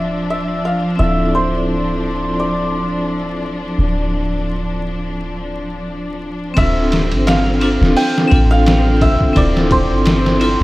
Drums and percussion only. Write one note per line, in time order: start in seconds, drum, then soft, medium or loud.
6.57 kick loud
6.57 ride medium
6.92 snare medium
6.92 ride medium
7.12 ride soft
7.27 snare loud
7.27 ride medium
7.61 ride medium
7.83 snare soft
7.97 open hi-hat medium
8.18 snare medium
8.31 kick medium
8.31 ride medium
8.67 snare loud
8.67 ride medium
9.01 kick medium
9.01 ride medium
9.21 kick medium
9.36 kick loud
9.36 ride medium
9.57 snare soft
9.71 kick loud
9.71 ride medium
10.06 snare loud
10.06 ride medium
10.26 snare medium
10.41 ride medium